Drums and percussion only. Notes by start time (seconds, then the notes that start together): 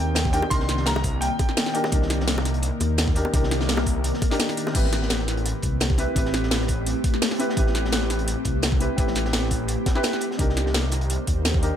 0.15 snare, closed hi-hat
0.25 kick, snare
0.33 closed hi-hat
0.42 high bongo
0.51 kick, closed hi-hat
0.60 snare
0.69 snare, closed hi-hat
0.77 snare
0.86 snare, closed hi-hat
0.96 snare, high bongo
1.04 kick, closed hi-hat, open hi-hat
1.22 closed hi-hat
1.39 kick, closed hi-hat, high bongo
1.49 snare
1.57 snare, closed hi-hat, open hi-hat
1.66 snare
1.75 closed hi-hat
1.84 snare, high bongo
1.92 kick, closed hi-hat
2.02 snare
2.10 snare, closed hi-hat
2.20 snare
2.27 snare, closed hi-hat
2.38 snare, high bongo
2.45 snare, closed hi-hat
2.54 closed hi-hat
2.62 closed hi-hat
2.80 closed hi-hat, high bongo
2.98 snare, closed hi-hat
3.08 kick, snare
3.16 closed hi-hat
3.25 high bongo
3.34 kick, closed hi-hat
3.43 snare
3.51 snare, closed hi-hat
3.60 snare
3.69 snare, closed hi-hat
3.77 snare, high bongo
3.86 kick, closed hi-hat, open hi-hat
4.04 closed hi-hat
4.14 snare
4.22 kick, closed hi-hat, high bongo
4.31 snare, closed hi-hat
4.39 snare, closed hi-hat
4.49 snare, closed hi-hat
4.57 closed hi-hat
4.67 snare, high bongo
4.75 kick, closed hi-hat, crash
4.84 snare
4.92 snare, closed hi-hat
5.02 snare
5.10 snare, closed hi-hat
5.19 snare
5.28 snare, closed hi-hat
5.37 closed hi-hat
5.45 closed hi-hat
5.62 kick, closed hi-hat
5.80 snare, closed hi-hat
5.90 kick, snare
5.98 closed hi-hat
6.16 kick, closed hi-hat
6.25 snare
6.34 snare, closed hi-hat
6.43 snare
6.51 snare, closed hi-hat
6.61 snare
6.68 kick, closed hi-hat, open hi-hat
6.86 closed hi-hat
7.04 kick, closed hi-hat
7.14 snare
7.22 snare, closed hi-hat, open hi-hat
7.31 snare
7.40 closed hi-hat
7.49 snare
7.57 kick, closed hi-hat
7.67 snare
7.75 snare, closed hi-hat
7.85 snare
7.92 snare, closed hi-hat
8.02 snare
8.10 snare, closed hi-hat
8.19 closed hi-hat
8.28 closed hi-hat
8.45 kick, closed hi-hat
8.63 snare, closed hi-hat
8.72 kick, snare
8.81 closed hi-hat
8.98 kick, closed hi-hat
9.07 snare
9.15 snare, closed hi-hat
9.25 snare
9.33 snare, closed hi-hat
9.43 snare
9.51 kick, closed hi-hat, open hi-hat
9.68 closed hi-hat
9.86 kick, snare, closed hi-hat
9.95 snare
10.03 snare, closed hi-hat
10.13 snare
10.21 closed hi-hat
10.31 snare
10.39 kick, closed hi-hat
10.49 snare
10.57 snare, closed hi-hat
10.66 snare
10.74 snare, closed hi-hat
10.84 snare
10.92 snare, closed hi-hat
11.01 closed hi-hat
11.10 closed hi-hat
11.27 kick, closed hi-hat
11.45 snare, closed hi-hat
11.54 kick, snare
11.63 closed hi-hat